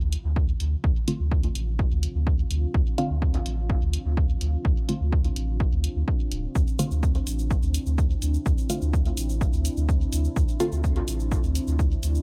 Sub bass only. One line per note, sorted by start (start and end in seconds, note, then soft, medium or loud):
0.01 0.16 D2 medium
0.24 0.54 D2 medium
0.60 0.76 D2 medium
0.84 0.92 D2 loud
1.20 1.49 D2 medium
1.55 1.85 A1 medium
1.91 2.07 D2 loud
2.15 2.44 D2 medium
2.51 2.66 D2 medium
2.74 2.82 D2 loud
3.10 3.39 D2 medium
3.46 3.75 A1 loud
3.82 3.97 D2 loud
4.05 4.35 D2 medium
4.41 4.57 D2 medium
4.65 4.73 D2 loud
5.01 5.30 D2 medium
5.36 5.65 A1 medium
5.72 5.88 D2 medium
5.96 6.04 D2 medium
6.32 6.47 D1 medium
6.55 6.63 D2 loud
6.91 7.20 D2 medium
7.27 7.56 A1 medium
7.62 7.78 D2 medium
7.86 8.15 D2 medium
8.22 8.38 D2 medium
8.46 8.54 D2 loud
8.82 9.11 D2 medium
9.17 9.46 A1 medium
9.53 9.69 D2 loud
9.77 10.06 D2 medium
10.13 10.28 D2 medium
10.36 10.44 D2 loud
10.72 11.01 D2 medium
11.08 11.37 A1 medium
11.44 11.59 D2 loud
11.67 11.96 D2 medium
12.03 12.19 D2 loud